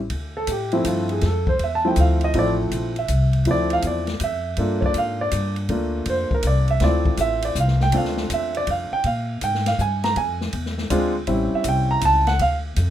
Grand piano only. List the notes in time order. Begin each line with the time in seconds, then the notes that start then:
0.37 A4
0.52 G4
0.73 F3 A3 C4 E4
0.87 F4
1.12 G#4
1.26 A4
1.49 C5
1.64 E5
1.75 A5
1.85 F3 A3 C4 E4 G5
2.00 F5
2.24 D#5
2.35 F3 A3 C4 E4 D5
2.99 E5
3.47 F3 A3 C4 E4 D5
3.73 F5
3.87 D5
4.24 E5
4.58 A#3 D4 F4 A4
4.81 C#5
4.86 D5
4.98 F5
5.21 D5
5.69 A3 A#3 D4 F4
6.10 C5
6.34 A#4
6.47 D5
6.71 E5
6.81 A3 C4 E4 F4 D5
7.21 E5
7.45 D5
7.60 F5
7.83 G5
7.93 A3 C4 D4 F4
7.97 F5
8.34 E5
8.57 D5
8.71 F5
8.93 G5
9.06 F5
9.44 G5
9.67 F5
9.81 G#5
10.04 A#5
10.17 G#5
10.90 G#3 C4 D4 F4
11.27 G3 C4 C#4 E4
11.55 E5
11.69 G5
11.91 A#5
12.05 A5
12.27 F#5
12.42 F5